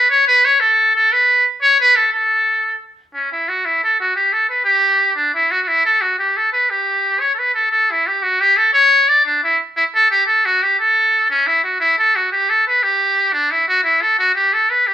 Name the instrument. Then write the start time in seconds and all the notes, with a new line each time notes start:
muted trumpet
0.10 C#5
0.28 B4
0.45 C#5
0.60 A4
0.96 A4
1.12 B4
1.62 C#5
1.81 B4
1.96 A4
2.12 A4
3.14 C#4
3.32 E4
3.48 F#4
3.65 E4
3.84 A4
4.00 F#4
4.16 G4
4.33 A4
4.50 B4
4.65 G4
5.16 D4
5.35 E4
5.51 F#4
5.62 F#4
5.68 E4
5.85 A4
6.01 F#4
6.19 G4
6.37 A4
6.53 B4
6.70 G4
7.20 C#5
7.35 A4 B4
7.55 A4
7.71 A4
7.91 E4
8.07 G4
8.23 F#4
8.41 G4
8.57 A4
8.73 C#5
9.08 D5
9.25 D4
9.44 E4
9.77 E4
9.95 A4
10.11 G4
10.26 A4
10.46 F#4
10.63 G4
10.80 A4
11.30 C#4
11.47 E4
11.64 F#4
11.80 E4
11.98 A4
12.16 F#4
12.32 G4
12.49 A4
12.67 B4
12.83 G4
13.33 D4
13.51 E4
13.68 F#4
13.84 E4
14.02 A4
14.19 F#4
14.35 G4
14.53 A4
14.70 B4
14.87 G4